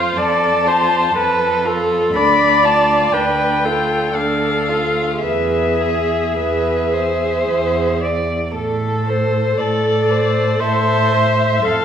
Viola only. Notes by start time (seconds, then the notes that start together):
Already playing: C5
0.17 D5
0.67 C5
1.17 B4
1.66 A4
2.16 D5
3.14 B4
3.65 A4
5.24 G#4
8.54 A4
9.58 A4
10.60 C5
11.66 A4